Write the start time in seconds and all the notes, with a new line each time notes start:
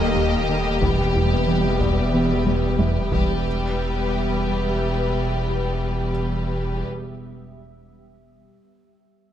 Already playing: D#1 D#2 G3 A#3 G4 A4 D#5
0.16 D#2 D#3
0.49 D#3 A#3
0.82 E1 E2 E3 G3 B3 B4 E5, taiko
1.16 E2 E4
1.48 E3 B3
1.80 E2 E3 D5, taiko
2.13 E3 B3
2.46 E2 G3, taiko high
2.78 E2 E3 E5, taiko high
3.12 E1 E2 G3 B3 G4 B4 E5, taiko